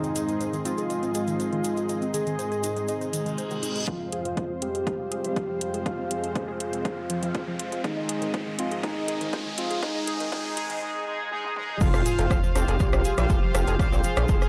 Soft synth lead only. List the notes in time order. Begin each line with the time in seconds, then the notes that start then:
Already playing: D#4
0.65 F4
2.14 G#4
3.87 F4
4.62 G4
6.11 G#4
7.84 D#4
8.59 F4
8.84 D#4
9.58 F4
9.83 D#4
10.32 D#4
11.81 F4
12.55 G4
14.04 G#4